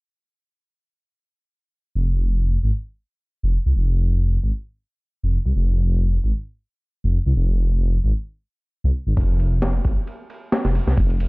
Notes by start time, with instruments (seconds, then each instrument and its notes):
1.95 detuned saw bass F1
2.63 detuned saw bass G#1
3.43 detuned saw bass F1
3.66 detuned saw bass C2
3.76 detuned saw bass F1
4.44 detuned saw bass G#1
5.23 detuned saw bass F1
5.46 detuned saw bass C2
5.56 detuned saw bass F1
6.24 detuned saw bass G#1
7.04 detuned saw bass F1
7.26 detuned saw bass C2
7.36 detuned saw bass F1
8.04 detuned saw bass G#1
8.84 detuned saw bass C2
9.07 detuned saw bass G#1
9.17 detuned saw bass F1, kick, ride
9.39 ride
9.62 snare, ride
9.85 detuned saw bass G#1, kick, ride
10.07 ride
10.30 ride
10.52 snare, ride
10.65 detuned saw bass F1, snare
10.75 ride
10.87 detuned saw bass C2, snare
10.97 detuned saw bass F1, kick, ride
11.10 ride
11.20 ride